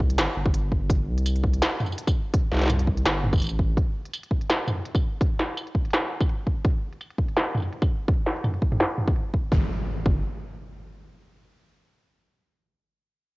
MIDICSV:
0, 0, Header, 1, 4, 480
1, 0, Start_track
1, 0, Tempo, 359281
1, 1201, Time_signature, 4, 2, 24, 8
1, 17860, End_track
2, 0, Start_track
2, 0, Title_t, "Sub bass"
2, 0, Program_c, 0, 38
2, 0, Note_on_c, 0, 36, 97
2, 228, Note_off_c, 0, 36, 0
2, 243, Note_on_c, 0, 31, 85
2, 361, Note_off_c, 0, 31, 0
2, 483, Note_on_c, 0, 31, 90
2, 1442, Note_on_c, 0, 36, 94
2, 1462, Note_off_c, 0, 31, 0
2, 2148, Note_off_c, 0, 36, 0
2, 3365, Note_on_c, 0, 36, 96
2, 4069, Note_off_c, 0, 36, 0
2, 4087, Note_on_c, 0, 31, 81
2, 4558, Note_off_c, 0, 31, 0
2, 4566, Note_on_c, 0, 33, 101
2, 5030, Note_off_c, 0, 33, 0
2, 12721, Note_on_c, 0, 31, 96
2, 12862, Note_off_c, 0, 31, 0
2, 13439, Note_on_c, 0, 31, 96
2, 13663, Note_off_c, 0, 31, 0
2, 17860, End_track
3, 0, Start_track
3, 0, Title_t, "Impact"
3, 0, Program_c, 1, 103
3, 12723, Note_on_c, 1, 60, 67
3, 14642, Note_off_c, 1, 60, 0
3, 17860, End_track
4, 0, Start_track
4, 0, Title_t, "Drums"
4, 130, Note_on_c, 9, 42, 37
4, 240, Note_off_c, 9, 42, 0
4, 240, Note_on_c, 9, 38, 121
4, 240, Note_on_c, 9, 42, 79
4, 373, Note_off_c, 9, 38, 0
4, 373, Note_off_c, 9, 42, 0
4, 607, Note_on_c, 9, 36, 104
4, 720, Note_on_c, 9, 42, 66
4, 741, Note_off_c, 9, 36, 0
4, 853, Note_off_c, 9, 42, 0
4, 958, Note_on_c, 9, 36, 60
4, 1092, Note_off_c, 9, 36, 0
4, 1198, Note_on_c, 9, 36, 117
4, 1203, Note_on_c, 9, 42, 81
4, 1332, Note_off_c, 9, 36, 0
4, 1337, Note_off_c, 9, 42, 0
4, 1574, Note_on_c, 9, 42, 36
4, 1683, Note_off_c, 9, 42, 0
4, 1683, Note_on_c, 9, 42, 64
4, 1683, Note_on_c, 9, 54, 59
4, 1814, Note_off_c, 9, 42, 0
4, 1814, Note_on_c, 9, 42, 35
4, 1816, Note_off_c, 9, 54, 0
4, 1919, Note_on_c, 9, 36, 65
4, 1948, Note_off_c, 9, 42, 0
4, 2052, Note_on_c, 9, 42, 35
4, 2053, Note_off_c, 9, 36, 0
4, 2164, Note_off_c, 9, 42, 0
4, 2164, Note_on_c, 9, 38, 124
4, 2164, Note_on_c, 9, 42, 78
4, 2164, Note_on_c, 9, 54, 35
4, 2298, Note_off_c, 9, 38, 0
4, 2298, Note_off_c, 9, 42, 0
4, 2298, Note_off_c, 9, 54, 0
4, 2407, Note_on_c, 9, 45, 57
4, 2407, Note_on_c, 9, 54, 15
4, 2488, Note_off_c, 9, 54, 0
4, 2488, Note_on_c, 9, 54, 20
4, 2541, Note_off_c, 9, 45, 0
4, 2568, Note_off_c, 9, 54, 0
4, 2568, Note_on_c, 9, 54, 27
4, 2645, Note_on_c, 9, 42, 64
4, 2701, Note_off_c, 9, 54, 0
4, 2770, Note_on_c, 9, 36, 108
4, 2773, Note_on_c, 9, 54, 59
4, 2778, Note_off_c, 9, 42, 0
4, 2903, Note_off_c, 9, 36, 0
4, 2906, Note_off_c, 9, 54, 0
4, 3121, Note_on_c, 9, 36, 123
4, 3121, Note_on_c, 9, 42, 76
4, 3254, Note_off_c, 9, 36, 0
4, 3254, Note_off_c, 9, 42, 0
4, 3361, Note_on_c, 9, 38, 30
4, 3396, Note_off_c, 9, 38, 0
4, 3396, Note_on_c, 9, 38, 33
4, 3430, Note_off_c, 9, 38, 0
4, 3430, Note_on_c, 9, 38, 36
4, 3461, Note_off_c, 9, 38, 0
4, 3461, Note_on_c, 9, 38, 39
4, 3493, Note_off_c, 9, 38, 0
4, 3493, Note_on_c, 9, 38, 41
4, 3493, Note_on_c, 9, 42, 35
4, 3519, Note_off_c, 9, 38, 0
4, 3519, Note_on_c, 9, 38, 45
4, 3550, Note_off_c, 9, 38, 0
4, 3550, Note_on_c, 9, 38, 50
4, 3575, Note_off_c, 9, 38, 0
4, 3575, Note_on_c, 9, 38, 53
4, 3603, Note_off_c, 9, 42, 0
4, 3603, Note_on_c, 9, 42, 62
4, 3603, Note_on_c, 9, 45, 54
4, 3603, Note_on_c, 9, 54, 59
4, 3709, Note_off_c, 9, 38, 0
4, 3731, Note_off_c, 9, 42, 0
4, 3731, Note_on_c, 9, 42, 36
4, 3736, Note_off_c, 9, 45, 0
4, 3736, Note_off_c, 9, 54, 0
4, 3841, Note_on_c, 9, 36, 62
4, 3865, Note_off_c, 9, 42, 0
4, 3974, Note_off_c, 9, 36, 0
4, 3974, Note_on_c, 9, 42, 34
4, 4083, Note_off_c, 9, 42, 0
4, 4083, Note_on_c, 9, 38, 115
4, 4083, Note_on_c, 9, 42, 75
4, 4217, Note_off_c, 9, 38, 0
4, 4217, Note_off_c, 9, 42, 0
4, 4328, Note_on_c, 9, 45, 58
4, 4449, Note_on_c, 9, 36, 106
4, 4455, Note_on_c, 9, 54, 27
4, 4462, Note_off_c, 9, 45, 0
4, 4485, Note_off_c, 9, 54, 0
4, 4485, Note_on_c, 9, 54, 31
4, 4513, Note_off_c, 9, 54, 0
4, 4513, Note_on_c, 9, 54, 35
4, 4541, Note_off_c, 9, 54, 0
4, 4541, Note_on_c, 9, 54, 39
4, 4568, Note_off_c, 9, 54, 0
4, 4568, Note_on_c, 9, 42, 59
4, 4568, Note_on_c, 9, 54, 43
4, 4583, Note_off_c, 9, 36, 0
4, 4601, Note_off_c, 9, 54, 0
4, 4601, Note_on_c, 9, 54, 44
4, 4632, Note_off_c, 9, 54, 0
4, 4632, Note_on_c, 9, 54, 51
4, 4663, Note_off_c, 9, 54, 0
4, 4663, Note_on_c, 9, 54, 55
4, 4702, Note_off_c, 9, 42, 0
4, 4797, Note_off_c, 9, 54, 0
4, 4799, Note_on_c, 9, 36, 63
4, 4933, Note_off_c, 9, 36, 0
4, 5039, Note_on_c, 9, 36, 114
4, 5046, Note_on_c, 9, 42, 73
4, 5173, Note_off_c, 9, 36, 0
4, 5179, Note_off_c, 9, 42, 0
4, 5417, Note_on_c, 9, 42, 33
4, 5525, Note_off_c, 9, 42, 0
4, 5525, Note_on_c, 9, 42, 60
4, 5525, Note_on_c, 9, 54, 63
4, 5656, Note_off_c, 9, 42, 0
4, 5656, Note_on_c, 9, 42, 33
4, 5658, Note_off_c, 9, 54, 0
4, 5758, Note_on_c, 9, 36, 61
4, 5790, Note_off_c, 9, 42, 0
4, 5892, Note_off_c, 9, 36, 0
4, 5894, Note_on_c, 9, 42, 34
4, 6007, Note_off_c, 9, 42, 0
4, 6007, Note_on_c, 9, 38, 109
4, 6007, Note_on_c, 9, 42, 72
4, 6007, Note_on_c, 9, 54, 36
4, 6141, Note_off_c, 9, 38, 0
4, 6141, Note_off_c, 9, 42, 0
4, 6141, Note_off_c, 9, 54, 0
4, 6247, Note_on_c, 9, 45, 53
4, 6247, Note_on_c, 9, 54, 34
4, 6380, Note_off_c, 9, 45, 0
4, 6380, Note_off_c, 9, 54, 0
4, 6485, Note_on_c, 9, 42, 61
4, 6609, Note_on_c, 9, 36, 104
4, 6618, Note_off_c, 9, 42, 0
4, 6618, Note_on_c, 9, 54, 65
4, 6743, Note_off_c, 9, 36, 0
4, 6751, Note_off_c, 9, 54, 0
4, 6959, Note_on_c, 9, 36, 109
4, 6966, Note_on_c, 9, 42, 70
4, 7092, Note_off_c, 9, 36, 0
4, 7100, Note_off_c, 9, 42, 0
4, 7205, Note_on_c, 9, 38, 62
4, 7339, Note_off_c, 9, 38, 0
4, 7444, Note_on_c, 9, 42, 58
4, 7444, Note_on_c, 9, 54, 68
4, 7573, Note_off_c, 9, 42, 0
4, 7573, Note_on_c, 9, 42, 33
4, 7578, Note_off_c, 9, 54, 0
4, 7679, Note_on_c, 9, 36, 60
4, 7707, Note_off_c, 9, 42, 0
4, 7812, Note_off_c, 9, 36, 0
4, 7814, Note_on_c, 9, 42, 34
4, 7888, Note_off_c, 9, 42, 0
4, 7888, Note_on_c, 9, 42, 29
4, 7925, Note_off_c, 9, 42, 0
4, 7925, Note_on_c, 9, 38, 110
4, 7925, Note_on_c, 9, 42, 73
4, 7969, Note_off_c, 9, 42, 0
4, 7969, Note_on_c, 9, 42, 23
4, 8058, Note_off_c, 9, 38, 0
4, 8103, Note_off_c, 9, 42, 0
4, 8289, Note_on_c, 9, 36, 99
4, 8295, Note_on_c, 9, 54, 65
4, 8405, Note_on_c, 9, 42, 61
4, 8422, Note_off_c, 9, 36, 0
4, 8429, Note_off_c, 9, 54, 0
4, 8539, Note_off_c, 9, 42, 0
4, 8639, Note_on_c, 9, 36, 57
4, 8772, Note_off_c, 9, 36, 0
4, 8879, Note_on_c, 9, 36, 111
4, 8881, Note_on_c, 9, 42, 74
4, 9012, Note_off_c, 9, 36, 0
4, 9015, Note_off_c, 9, 42, 0
4, 9253, Note_on_c, 9, 42, 34
4, 9363, Note_off_c, 9, 42, 0
4, 9363, Note_on_c, 9, 42, 62
4, 9363, Note_on_c, 9, 54, 65
4, 9493, Note_off_c, 9, 42, 0
4, 9493, Note_on_c, 9, 42, 34
4, 9497, Note_off_c, 9, 54, 0
4, 9598, Note_on_c, 9, 36, 59
4, 9626, Note_off_c, 9, 42, 0
4, 9731, Note_off_c, 9, 36, 0
4, 9733, Note_on_c, 9, 42, 36
4, 9841, Note_off_c, 9, 42, 0
4, 9841, Note_on_c, 9, 38, 108
4, 9841, Note_on_c, 9, 42, 75
4, 9841, Note_on_c, 9, 54, 37
4, 9975, Note_off_c, 9, 38, 0
4, 9975, Note_off_c, 9, 42, 0
4, 9975, Note_off_c, 9, 54, 0
4, 10084, Note_on_c, 9, 45, 59
4, 10084, Note_on_c, 9, 54, 17
4, 10117, Note_off_c, 9, 54, 0
4, 10117, Note_on_c, 9, 54, 21
4, 10151, Note_off_c, 9, 54, 0
4, 10151, Note_on_c, 9, 54, 27
4, 10183, Note_off_c, 9, 54, 0
4, 10183, Note_on_c, 9, 54, 29
4, 10217, Note_off_c, 9, 45, 0
4, 10317, Note_off_c, 9, 54, 0
4, 10321, Note_on_c, 9, 42, 60
4, 10446, Note_on_c, 9, 36, 94
4, 10452, Note_on_c, 9, 54, 68
4, 10454, Note_off_c, 9, 42, 0
4, 10580, Note_off_c, 9, 36, 0
4, 10585, Note_off_c, 9, 54, 0
4, 10796, Note_on_c, 9, 36, 117
4, 10800, Note_on_c, 9, 42, 80
4, 10930, Note_off_c, 9, 36, 0
4, 10933, Note_off_c, 9, 42, 0
4, 11040, Note_on_c, 9, 38, 58
4, 11171, Note_on_c, 9, 42, 36
4, 11173, Note_off_c, 9, 38, 0
4, 11277, Note_off_c, 9, 42, 0
4, 11277, Note_on_c, 9, 42, 66
4, 11277, Note_on_c, 9, 45, 62
4, 11277, Note_on_c, 9, 54, 64
4, 11409, Note_off_c, 9, 42, 0
4, 11409, Note_on_c, 9, 42, 35
4, 11411, Note_off_c, 9, 45, 0
4, 11411, Note_off_c, 9, 54, 0
4, 11517, Note_on_c, 9, 36, 61
4, 11542, Note_off_c, 9, 42, 0
4, 11650, Note_off_c, 9, 36, 0
4, 11650, Note_on_c, 9, 42, 39
4, 11650, Note_on_c, 9, 45, 62
4, 11760, Note_off_c, 9, 42, 0
4, 11760, Note_on_c, 9, 38, 110
4, 11760, Note_on_c, 9, 42, 75
4, 11784, Note_off_c, 9, 45, 0
4, 11893, Note_off_c, 9, 38, 0
4, 11893, Note_off_c, 9, 42, 0
4, 11998, Note_on_c, 9, 45, 61
4, 12127, Note_on_c, 9, 36, 98
4, 12131, Note_on_c, 9, 54, 66
4, 12132, Note_off_c, 9, 45, 0
4, 12241, Note_on_c, 9, 42, 62
4, 12261, Note_off_c, 9, 36, 0
4, 12265, Note_off_c, 9, 54, 0
4, 12374, Note_off_c, 9, 42, 0
4, 12478, Note_on_c, 9, 36, 57
4, 12611, Note_off_c, 9, 36, 0
4, 12719, Note_on_c, 9, 36, 115
4, 12852, Note_off_c, 9, 36, 0
4, 13439, Note_on_c, 9, 36, 112
4, 13572, Note_off_c, 9, 36, 0
4, 17860, End_track
0, 0, End_of_file